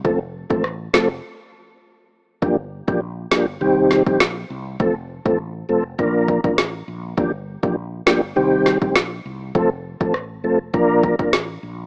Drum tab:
SD |----r-o---------|------o---o-o---|------------o---|------o---o-o---|
BD |o--o------------|o--o-------o----|o--o----o-oo----|o--o-------o----|

SD |----r-------o---|
BD |o--o----o-oo----|